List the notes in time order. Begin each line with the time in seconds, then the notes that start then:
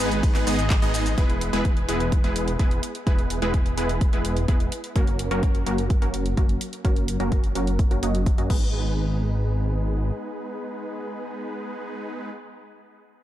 0.00 G#1 G#3 B3 D#4 G#4 B4
0.11 closed hi-hat, shaker
0.23 kick, closed hi-hat, ride, shaker
0.35 G#1 G#3 B3 D#4 G#4 B4, clap, closed hi-hat, shaker
0.47 G#1 G#3 B3 D#4 G#4 D#5, cross-stick, open hi-hat, shaker
0.59 closed hi-hat, shaker
0.70 kick, clap, closed hi-hat, ride, shaker
0.82 G#1 G#3 B3 D#4 G#4 D#5, closed hi-hat, shaker
0.94 open hi-hat, shaker
1.06 closed hi-hat, shaker
1.18 E1 G#3 B3 E4 G#4 B4, kick, closed hi-hat
1.30 closed hi-hat
1.41 closed hi-hat
1.53 E1 G#3 B3 E4 G#4 B4, closed hi-hat
1.65 kick, closed hi-hat
1.77 closed hi-hat
1.89 E1 G#3 B3 E4 G#4 B4, closed hi-hat
2.00 closed hi-hat
2.12 kick, closed hi-hat
2.24 E1 G#3 B3 E4 G#4 B4, closed hi-hat
2.36 closed hi-hat
2.48 closed hi-hat
2.59 E1 G#3 B3 E4 G#4 B4, kick, closed hi-hat
2.71 closed hi-hat
2.83 closed hi-hat
2.95 closed hi-hat
3.07 E1 G#3 B3 E4 G#4 B4, kick, closed hi-hat
3.19 closed hi-hat
3.30 closed hi-hat
3.42 E1 G#3 B3 E4 G#4 B4, closed hi-hat
3.54 kick, closed hi-hat
3.66 closed hi-hat
3.78 E1 G#3 B3 E4 G#4 B4, closed hi-hat
3.89 closed hi-hat
4.01 kick, closed hi-hat
4.13 E1 G#3 B3 E4 G#4 B4, closed hi-hat
4.25 closed hi-hat
4.37 closed hi-hat
4.48 E1 G#3 B3 E4 G#4 B4, kick, closed hi-hat
4.60 closed hi-hat
4.72 closed hi-hat
4.84 closed hi-hat
4.96 F#1 F#3 A#3 C#4 F#4 A#4, kick, closed hi-hat
5.07 closed hi-hat
5.19 closed hi-hat
5.31 F#1 F#3 A#3 C#4 F#4 A#4, closed hi-hat
5.43 kick, closed hi-hat
5.55 closed hi-hat
5.66 F#1 F#3 A#3 C#4 F#4 A#4, closed hi-hat
5.78 closed hi-hat
5.90 kick, closed hi-hat
6.02 F#1 F#3 A#3 C#4 F#4 A#4, closed hi-hat
6.14 closed hi-hat
6.26 closed hi-hat
6.37 F#1 F#3 A#3 C#4 F#4 A#4, kick, closed hi-hat
6.49 closed hi-hat
6.61 closed hi-hat
6.73 closed hi-hat
6.85 F#1 F#3 A#3 C#4 F#4 A#4, kick, closed hi-hat
6.96 closed hi-hat
7.08 closed hi-hat
7.20 F#1 F#3 A#3 C#4 F#4 A#4, closed hi-hat
7.32 kick, closed hi-hat
7.44 closed hi-hat
7.55 F#1 F#3 A#3 C#4 F#4 A#4, closed hi-hat
7.67 closed hi-hat
7.79 kick, closed hi-hat
7.91 F#1 F#3 A#3 C#4 F#4 A#4, closed hi-hat
8.03 F#1 F#3 A#3 C#4 F#4 D#5, closed hi-hat
8.15 closed hi-hat
8.26 kick, closed hi-hat
8.38 F#2 F#3 A#3 C#4 F#4 D#5, closed hi-hat
8.50 G#1 G#3 B3 D#4 G#4 B4, kick, crash